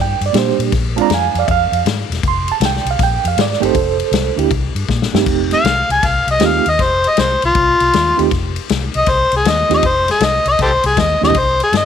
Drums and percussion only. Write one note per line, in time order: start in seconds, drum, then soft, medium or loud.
0.21 ride medium
0.34 snare loud
0.34 ride medium
0.60 ride medium
0.72 kick loud
0.72 snare soft
0.72 ride medium
0.98 ride medium
1.10 snare loud
1.10 ride medium
1.35 ride medium
1.48 kick loud
1.48 ride medium
1.73 ride medium
1.86 snare loud
1.86 ride medium
2.12 snare soft
2.12 ride medium
2.23 kick loud
2.23 ride medium
2.48 ride medium
2.61 snare loud
2.61 ride medium
2.86 ride medium
2.99 kick loud
2.99 snare soft
2.99 ride medium
3.25 ride medium
3.38 snare loud
3.38 ride medium
3.63 ride medium
3.75 kick loud
3.75 ride medium
4.00 ride medium
4.13 snare loud
4.13 ride medium
4.39 ride medium
4.51 kick loud
4.51 ride medium
4.76 ride medium
4.89 kick medium
4.89 snare medium
5.02 snare medium
5.15 snare loud
5.26 kick loud
5.26 crash medium
5.51 snare soft
5.51 ride medium
5.65 snare loud
5.65 ride medium
5.90 ride medium
6.03 kick loud
6.03 snare soft
6.03 ride medium
6.28 ride medium
6.40 snare loud
6.40 ride medium
6.66 ride medium
6.79 kick loud
6.79 snare soft
6.79 ride medium
7.04 ride medium
7.17 snare loud
7.17 ride medium
7.42 ride medium
7.55 kick loud
7.55 ride medium
7.80 ride medium
7.93 snare loud
7.93 ride medium
8.19 ride medium
8.31 kick loud
8.31 snare soft
8.31 ride medium
8.56 ride medium
8.69 snare loud
8.69 ride medium
8.94 ride medium
9.06 kick loud
9.06 snare soft
9.06 ride medium
9.32 ride medium
9.45 snare loud
9.45 ride medium
9.71 snare soft
9.71 ride medium
9.83 kick loud
9.83 ride medium
10.08 snare soft
10.08 ride medium
10.21 snare loud
10.21 ride medium
10.46 ride medium
10.59 kick loud
10.59 snare soft
10.59 ride medium
10.83 ride medium
10.97 kick medium
10.97 snare loud
10.97 ride medium
11.23 snare medium
11.30 floor tom medium
11.34 kick loud
11.34 ride medium
11.60 ride medium
11.73 snare loud
11.73 ride medium